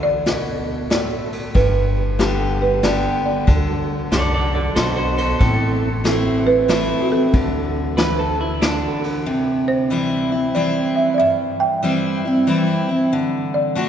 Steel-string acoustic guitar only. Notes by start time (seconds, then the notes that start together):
Already playing: D3
0.26 B2
0.90 A2
1.55 G2
2.19 D3 G3 B3 G4
2.83 D3 G3 B3 G4
3.47 D3
4.12 F#2
4.76 B2
5.41 A2
6.04 E3 A3 C4 E4
6.68 E3 A3 C4 E4
7.10 C4 E4
7.34 D3
7.98 E3
8.62 D3
9.26 C3
9.90 E3 G3 C4 E4
10.32 C4 E4
10.55 E3 G3 C4 E4
11.20 G2
11.83 E3 G3 C4 E4
12.25 C4 E4
12.47 E3 G3 C4 E4
12.89 C4 E4
13.13 D3
13.75 D3 A3 D4 F#4